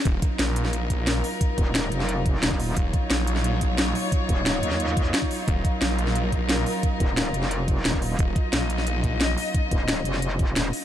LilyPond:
<<
  \new Staff \with { instrumentName = "String section" } { \time 4/4 \key ees \minor \tempo 4 = 177 << { bes'1~ | bes'1 | des''1~ | des''1 |
bes'1~ | bes'1 | ees''1~ | ees''1 | } \\ { <ges ees' f'>1~ | <ges ees' f'>1~ | <ges ees' f'>1~ | <ges ees' f'>1~ |
<ges ees' f'>1~ | <ges ees' f'>1~ | <ges ees' f'>1~ | <ges ees' f'>1 | } >> }
  \new Staff \with { instrumentName = "Detuned saw bass" } { \clef bass \time 4/4 \key ees \minor ees,,8 r8 bes,,4. bes,,4 r8 | r1 | ees,,8 r8 bes,,4. bes,,4 r8 | r1 |
ees,,8 r8 bes,,4. bes,,4 r8 | r1 | ees,,8 r8 bes,,4. bes,,4 r8 | r1 | }
  \new Staff \with { instrumentName = "Wobble bass" } { \clef bass \time 4/4 \key ees \minor r1 | r8 ees,,4 f,,4. ees,,4 | r1 | r8 ees,,4 ees,4. r4 |
r1 | r8 ees,,4 f,,4. ees,,4 | r1 | r8 ees,,4 f,,4. ees,,8 r8 | }
  \new DrumStaff \with { instrumentName = "Drums" } \drummode { \time 4/4 <hh bd>8 <hh bd>8 <hh sn>8 hh16 sn16 hh8 <hh bd>8 <hh sn>8 hho8 | <hh bd>8 <hh bd>8 <hh sn>8 hh16 sn16 hh8 <hh bd>8 <hh sn>16 bd16 hho8 | <hh bd>8 <hh bd>8 <hh sn>8 hh16 sn16 hh8 <hh bd>8 <hh sn>8 hho8 | <hh bd>8 <hh bd>8 <hh sn>8 hh16 sn16 hh8 <hh bd>8 <hh sn>16 bd16 hho8 |
<hh bd>8 <hh bd>8 <hh sn>8 hh16 sn16 hh8 <hh bd>8 <hh sn>8 hho8 | <hh bd>8 <hh bd>8 <hh sn>8 hh16 sn16 hh8 <hh bd>8 <hh sn>16 bd16 hho8 | <hh bd>8 <hh bd>8 <hh sn>8 hh16 sn16 hh8 <hh bd>8 <hh sn>8 hho8 | <hh bd>8 <hh bd>8 <hh sn>8 hh16 sn16 hh8 <hh bd>8 <hh sn>8 hho8 | }
>>